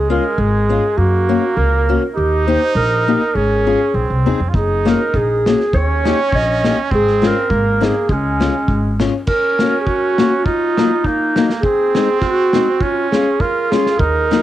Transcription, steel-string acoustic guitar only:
0.10 0.23 G#3 medium
0.10 0.23 C#4 medium
0.10 0.23 F4 medium
0.69 0.82 G#3 medium
0.69 0.82 C#4 medium
0.69 0.83 F4 medium
1.29 1.42 A#3 medium
1.29 1.42 C#4 medium
1.29 1.42 F#4 medium
1.89 2.01 A#3 medium
1.89 2.01 C#4 medium
1.89 2.02 F#4 medium
2.48 2.60 A#3 medium
2.48 2.60 D#4 medium
2.48 2.60 G4 medium
3.08 3.20 A#3 medium
3.08 3.20 D#4 medium
3.08 3.20 G4 medium
3.67 3.79 C#4 medium
3.67 3.79 F4 medium
3.67 3.79 G#4 medium
4.26 4.39 C4 medium
4.26 4.39 D#4 medium
4.26 4.39 G#4 medium
4.85 4.98 A#3 medium
4.85 4.98 C#4 medium
4.85 4.99 F#4 medium
5.47 5.59 A#3 medium
5.47 5.59 C#4 medium
5.47 5.59 F#4 medium
6.05 6.17 A#3 medium
6.05 6.18 D#4 medium
6.05 6.18 G4 medium
6.63 6.76 A#3 medium
6.63 6.76 D#4 soft
6.63 6.76 G4 medium
7.22 7.34 G#3 medium
7.22 7.35 C#4 medium
7.22 7.35 F4 medium
7.80 7.93 G#3 medium
7.80 7.94 C4 medium
7.80 7.94 D#4 medium
8.40 8.53 G#3 medium
8.40 8.53 C#4 medium
8.40 8.53 F4 medium
9.00 9.12 G#3 medium
9.00 9.13 C#4 medium
9.00 9.13 F4 medium
9.60 9.72 A#3 medium
9.60 9.73 C#4 medium
9.60 9.72 F#4 medium
10.19 10.31 A#3 medium
10.19 10.31 C#4 medium
10.19 10.32 F#4 medium
10.78 10.90 F#3 medium
10.78 10.90 A#3 medium
10.78 10.91 D#4 medium
11.36 11.48 F#3 medium
11.36 11.49 A#3 medium
11.36 11.49 D#4 medium
11.95 12.07 G#3 medium
11.95 12.08 C4 medium
11.95 12.08 D#4 medium
12.54 12.66 G#3 medium
12.54 12.67 C4 medium
12.54 12.67 D#4 medium
13.13 13.25 G#3 medium
13.13 13.26 C#4 medium
13.13 13.26 F4 medium
13.72 13.85 G#3 medium
13.72 13.85 C#4 medium
13.72 13.85 F4 medium
14.31 14.42 F#3 medium
14.31 14.42 A#3 medium
14.31 14.42 D#4 medium

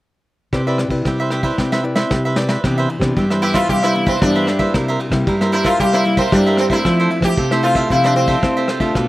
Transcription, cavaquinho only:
0.53 0.65 G4 soft
0.53 0.66 B4 soft
0.53 0.65 C5 soft
0.53 0.66 E5 soft
0.67 0.78 B4 medium
0.67 0.78 C5 soft
0.67 0.78 E5 medium
0.79 muted cavaquinho stroke soft
1.06 1.18 G4 soft
1.06 1.19 B4 soft
1.06 1.18 C5 soft
1.06 1.18 E5 soft
1.20 1.31 B4 medium
1.20 1.30 C5 soft
1.20 1.31 E5 medium
1.31 1.44 G4 medium
1.31 1.43 B4 medium
1.31 1.43 C5 medium
1.31 1.42 E5 medium
1.43 1.57 B4 medium
1.43 1.57 C5 medium
1.43 1.56 E5 medium
1.58 1.70 G4 soft
1.58 1.71 B4 soft
1.58 1.71 C5 soft
1.58 1.71 E5 medium
1.72 1.83 B4 medium
1.72 1.83 C5 medium
1.72 1.84 E5 medium
1.84 muted cavaquinho stroke soft
1.95 2.22 B4 medium
1.95 2.23 C5 medium
1.95 2.22 E5 medium
2.25 2.36 B4 medium
2.25 2.36 C5 soft
2.25 2.37 E5 medium
2.36 2.49 G4 soft
2.36 2.48 B4 soft
2.36 2.49 C5 soft
2.36 2.48 E5 soft
2.49 2.62 B4 soft
2.49 2.63 C5 soft
2.49 2.62 E5 medium
2.64 2.76 G4 soft
2.64 2.77 B4 soft
2.64 2.76 C5 soft
2.64 2.76 E5 soft
2.78 2.89 B4 medium
2.78 2.89 C5 medium
2.78 2.89 E5 medium
2.89 muted cavaquinho stroke soft
3.17 3.29 G4 soft
3.17 3.29 B4 soft
3.17 3.29 C5 soft
3.17 3.29 E5 medium
3.31 3.42 B4 medium
3.31 3.41 C5 soft
3.31 3.42 E5 medium
3.42 3.55 G4 medium
3.42 3.53 B4 medium
3.42 3.54 C5 medium
3.42 3.53 E5 medium
3.54 3.67 B4 medium
3.54 3.68 C5 medium
3.54 3.67 E5 medium
3.69 3.81 G4 soft
3.69 3.82 B4 soft
3.69 3.82 C5 soft
3.69 3.81 E5 medium
3.83 3.94 B4 medium
3.83 3.94 C5 medium
3.83 3.95 E5 medium
3.95 muted cavaquinho stroke soft
4.06 4.33 B4 medium
4.06 4.33 C5 medium
4.06 4.33 E5 medium
4.36 4.47 B4 soft
4.36 4.47 C5 soft
4.36 4.47 E5 medium
4.47 4.60 G4 soft
4.47 4.59 B4 soft
4.47 4.59 C5 soft
4.47 4.58 E5 soft
4.59 4.73 B4 soft
4.59 4.73 C5 soft
4.59 4.72 E5 medium
4.74 4.86 E4 soft
4.74 4.87 A#4 soft
4.74 4.87 C5 soft
4.74 4.87 E5 soft
4.88 4.99 A#4 medium
4.88 5.00 C5 medium
4.88 5.00 E5 medium
5.00 muted cavaquinho stroke soft
5.27 5.39 E4 soft
5.27 5.40 A#4 soft
5.27 5.40 C5 soft
5.27 5.40 E5 soft
5.41 5.51 A#4 medium
5.41 5.52 C5 medium
5.41 5.52 E5 medium
5.52 5.65 E4 medium
5.52 5.64 A#4 medium
5.52 5.64 C5 medium
5.52 5.63 E5 medium
5.64 5.78 A#4 medium
5.64 5.78 C5 medium
5.64 5.78 E5 medium
5.79 5.92 E4 soft
5.79 5.92 A#4 soft
5.79 5.92 C5 soft
5.79 5.92 E5 medium
5.93 6.04 A#4 medium
5.93 6.04 C5 medium
5.93 6.04 E5 medium
6.05 muted cavaquinho stroke soft
6.17 6.44 A#4 medium
6.17 6.44 C5 medium
6.17 6.43 E5 medium
6.46 6.57 A#4 medium
6.46 6.58 C5 medium
6.46 6.58 E5 medium
6.58 6.71 E4 soft
6.58 6.70 A#4 soft
6.58 6.70 C5 soft
6.58 6.69 E5 soft
6.70 6.84 A#4 soft
6.70 6.83 C5 medium
6.70 6.83 E5 medium
6.85 6.97 F4 soft
6.85 6.97 A4 soft
6.85 6.98 C5 soft
6.85 6.98 E5 medium
7.00 7.10 A4 medium
7.00 7.10 C5 medium
7.00 7.11 E5 medium
7.11 muted cavaquinho stroke soft
7.38 7.50 F4 soft
7.38 7.50 A4 soft
7.38 7.50 C5 soft
7.38 7.50 E5 soft
7.52 7.62 A4 soft
7.52 7.63 C5 medium
7.52 7.63 E5 medium
7.63 7.75 F4 medium
7.63 7.76 A4 medium
7.63 7.75 C5 medium
7.63 7.74 E5 medium
7.75 7.89 A4 medium
7.75 7.89 C5 medium
7.75 7.88 E5 medium
7.90 8.02 F4 soft
7.90 8.03 A4 medium
7.90 8.03 C5 medium
7.90 8.03 E5 soft
8.04 8.15 A4 medium
8.04 8.15 C5 medium
8.04 8.15 E5 medium
8.16 muted cavaquinho stroke soft
8.28 8.55 A4 medium
8.28 8.54 C5 medium
8.28 8.54 E5 medium
8.57 8.68 A4 soft
8.57 8.68 C5 medium
8.57 8.68 E5 medium
8.68 8.81 F4 soft
8.68 8.81 A4 soft
8.68 8.80 C5 soft
8.68 8.79 E5 medium
8.80 8.94 A4 soft
8.80 8.94 C5 medium
8.80 8.93 E5 medium
8.95 9.07 F4 soft
8.95 9.08 A4 soft
8.95 9.08 B4 soft
8.95 9.08 D5 soft

